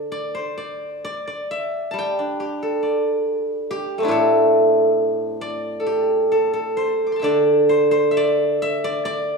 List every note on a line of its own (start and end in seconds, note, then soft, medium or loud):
0.00 1.05 D3 soft
0.00 0.34 C5 soft
0.00 0.11 D5 medium
0.00 0.86 E5 soft
0.12 0.57 D5 medium
0.35 2.33 C5 medium
0.58 1.04 D5 medium
1.05 1.27 D5 medium
1.27 2.82 D5 medium
1.51 3.23 E5 medium
1.91 4.53 G3 soft
1.91 3.36 A5 medium
1.99 3.54 G5 medium
2.19 3.91 D4 soft
2.40 3.69 G4 soft
2.63 4.10 A4 soft
2.83 4.53 D5 soft
3.71 4.09 G4 medium
3.98 7.31 A3 soft
3.98 7.01 C4 soft
4.03 6.83 D4 soft
4.03 6.65 E4 medium
4.08 6.77 A2 medium
4.08 5.86 G4 medium
4.08 5.79 A4 medium
5.41 7.24 D5 medium
5.80 6.31 A4 soft
5.86 8.22 G4 soft
6.32 6.53 A4 medium
6.53 8.73 A4 soft
6.77 7.69 C5 medium
7.07 8.28 D6 soft
7.12 8.61 A5 soft
7.12 8.43 C6 soft
7.20 9.38 D3 soft
7.20 8.11 E5 soft
7.20 8.75 G5 soft
7.24 8.17 D5 medium
7.69 7.91 C5 medium
7.91 9.38 C5 medium
8.11 8.62 E5 medium
8.17 8.84 D5 medium
8.62 9.38 E5 medium
8.84 9.05 D5 medium
9.05 9.38 D5 medium